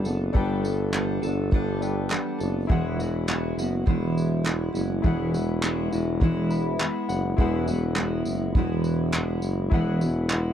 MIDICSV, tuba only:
0, 0, Header, 1, 2, 480
1, 0, Start_track
1, 0, Tempo, 585938
1, 285, Time_signature, 4, 2, 24, 8
1, 8626, End_track
2, 0, Start_track
2, 0, Title_t, "Tuba"
2, 0, Program_c, 0, 58
2, 29, Note_on_c, 0, 30, 94
2, 258, Note_off_c, 0, 30, 0
2, 282, Note_on_c, 0, 31, 105
2, 972, Note_off_c, 0, 31, 0
2, 999, Note_on_c, 0, 31, 100
2, 1711, Note_off_c, 0, 31, 0
2, 1963, Note_on_c, 0, 30, 85
2, 2186, Note_off_c, 0, 30, 0
2, 2209, Note_on_c, 0, 28, 108
2, 2896, Note_off_c, 0, 28, 0
2, 2920, Note_on_c, 0, 30, 81
2, 3145, Note_off_c, 0, 30, 0
2, 3171, Note_on_c, 0, 28, 100
2, 3857, Note_off_c, 0, 28, 0
2, 3881, Note_on_c, 0, 30, 90
2, 4106, Note_off_c, 0, 30, 0
2, 4131, Note_on_c, 0, 28, 103
2, 4817, Note_off_c, 0, 28, 0
2, 4850, Note_on_c, 0, 28, 109
2, 5556, Note_off_c, 0, 28, 0
2, 5802, Note_on_c, 0, 30, 97
2, 6025, Note_off_c, 0, 30, 0
2, 6047, Note_on_c, 0, 28, 107
2, 6733, Note_off_c, 0, 28, 0
2, 6763, Note_on_c, 0, 30, 85
2, 7003, Note_on_c, 0, 28, 100
2, 7015, Note_off_c, 0, 30, 0
2, 7721, Note_on_c, 0, 30, 93
2, 7733, Note_off_c, 0, 28, 0
2, 7942, Note_off_c, 0, 30, 0
2, 7961, Note_on_c, 0, 28, 100
2, 8626, Note_off_c, 0, 28, 0
2, 8626, End_track
0, 0, End_of_file